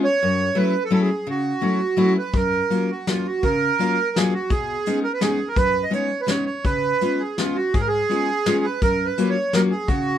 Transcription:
0.04 accordion C#5
0.23 steel-string acoustic guitar F#2
0.55 steel-string acoustic guitar F#3 A3 C#4 E4, accordion B4
0.85 accordion A4
0.90 steel-string acoustic guitar F#3 A3 C#4 E4, accordion A4
1.02 accordion G#4
1.27 steel-string acoustic guitar C#3, accordion F#4
1.61 steel-string acoustic guitar F#3 A3 C#4 E4
1.97 steel-string acoustic guitar F#3 A3 C#4 E4
2.18 accordion B4
2.33 steel-string acoustic guitar F#2, accordion A#4, kick, closed hi-hat
2.70 steel-string acoustic guitar F#3 A#3 C#4 F4, closed hi-hat
2.91 accordion F#4
3.07 steel-string acoustic guitar F#3 A#3 C#4 F4, accordion F4, snare, closed hi-hat
3.26 accordion F#4
3.43 steel-string acoustic guitar C#3, accordion A#4, kick, closed hi-hat
3.79 steel-string acoustic guitar F#3 A#3 C#4 F4, closed hi-hat
4.16 steel-string acoustic guitar F#3 A#3 C#4 F4, accordion G#4, snare, closed hi-hat
4.34 accordion F#4
4.50 steel-string acoustic guitar B2, accordion G#4, kick, closed hi-hat
4.86 steel-string acoustic guitar G#3 B3 C#4 D#4, closed hi-hat
5.04 accordion A#4
5.13 accordion B4
5.21 steel-string acoustic guitar G#3 B3 C#4 D#4, accordion G#4, snare, closed hi-hat
5.48 accordion A#4
5.56 steel-string acoustic guitar F#2, accordion B4, kick, closed hi-hat
5.83 accordion D#5
5.90 steel-string acoustic guitar G#3 B3 C#4 D#4, accordion C#5, closed hi-hat
6.21 accordion B4
6.26 steel-string acoustic guitar G#3 B3 C#4 D#4, accordion C#5, snare, closed hi-hat
6.46 accordion C#5
6.64 steel-string acoustic guitar C#3, accordion B4, kick, closed hi-hat
7.01 steel-string acoustic guitar G#3 B3 C#4 F4, closed hi-hat
7.19 accordion G#4
7.38 steel-string acoustic guitar G#3 B3 C#4 F4, accordion F4, snare, closed hi-hat
7.56 accordion F#4
7.74 steel-string acoustic guitar G#2, accordion G#4, kick, closed hi-hat
7.80 accordion A#4
7.88 accordion G#4
8.09 steel-string acoustic guitar G#3 B3 C#4 F4, closed hi-hat
8.46 steel-string acoustic guitar G#3 B3 C#4 F4, snare, closed hi-hat
8.64 accordion B4
8.82 steel-string acoustic guitar F#2, accordion A#4, kick, closed hi-hat
9.05 accordion B4
9.18 steel-string acoustic guitar F#3 A#3 C#4 F4, closed hi-hat
9.29 accordion C#5
9.53 steel-string acoustic guitar F#3 A#3 C#4 F4, accordion A#4, snare, closed hi-hat
9.70 accordion G#4
9.87 steel-string acoustic guitar C#3, accordion F#4, kick, closed hi-hat

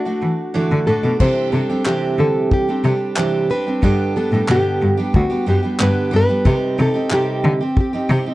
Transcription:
Already playing: nylon-string guitar F#4
0.05 steel-string acoustic guitar A3 D4 F#4 D5
0.22 cello E3
0.54 steel-string acoustic guitar D3 E3 A3 D4 F#4 D5
0.71 cello D3
0.87 cello A2, steel-string acoustic guitar A3 D4 F#4 D5, nylon-string guitar A4
1.03 cello B2, steel-string acoustic guitar A3 D4 F#4 D5
1.20 steel-string acoustic guitar C3 E3 G3 C4 D4 G4, cello C3, nylon-string guitar C5, kick, crash
1.52 cello C3, steel-string acoustic guitar G3 C4 D4 G4, nylon-string guitar A4
1.69 steel-string acoustic guitar G3 C4 D4 G4
1.85 steel-string acoustic guitar C3 E3 G3 C4 D4 G4, nylon-string guitar G4, clap
2.19 cello D3, nylon-string guitar A4
2.51 nylon-string guitar G4, kick
2.68 steel-string acoustic guitar G3 C4 D4 G4
2.84 cello C3, steel-string acoustic guitar G3 C4 D4 G4
3.16 steel-string acoustic guitar C3 E3 G3 C4 D4 G4, clap
3.50 steel-string acoustic guitar G3 C4 D4 G4, nylon-string guitar B4
3.66 steel-string acoustic guitar G3 C4 D4 G4
3.83 cello G2, steel-string acoustic guitar G2 D3 G3 B3 D4 G4, kick
4.16 steel-string acoustic guitar G3 B3 D4 G4, nylon-string guitar A4
4.32 cello A2, steel-string acoustic guitar G3 B3 D4 G4
4.48 steel-string acoustic guitar G2 D3 G3 B3 D4 G4, cello B2, nylon-string guitar G4, clap
4.82 cello G2
4.97 steel-string acoustic guitar G3 B3 D4 G4
5.14 cello D2, nylon-string guitar F#4, kick
5.30 steel-string acoustic guitar G3 B3 D4 G4
5.46 cello F#2, steel-string acoustic guitar G3 B3 D4 G4, nylon-string guitar G4
5.63 steel-string acoustic guitar G3 B3 D4 G4
5.79 steel-string acoustic guitar G2 D3 G3 B3 D4 G4, cello G2, nylon-string guitar B4, clap
6.11 cello G2, steel-string acoustic guitar G3 B3 D4 G4
6.16 nylon-string guitar B4
6.29 steel-string acoustic guitar G3 B3 D4 G4
6.45 steel-string acoustic guitar C3 G3 C4 D#4 G4, cello C3, kick
6.78 cello C3, steel-string acoustic guitar G3 C4 D#4 G4, nylon-string guitar A4
6.94 steel-string acoustic guitar C4 D#4 G4
7.10 steel-string acoustic guitar C3 G3 C4 D#4 G4, nylon-string guitar G4, clap
7.44 cello D3
7.61 steel-string acoustic guitar C4 G4
7.77 nylon-string guitar G4, kick
7.93 steel-string acoustic guitar C4 D#4 G4
8.10 cello C3, steel-string acoustic guitar G3 C4 D#4 G4
8.26 steel-string acoustic guitar C4 D#4 G4

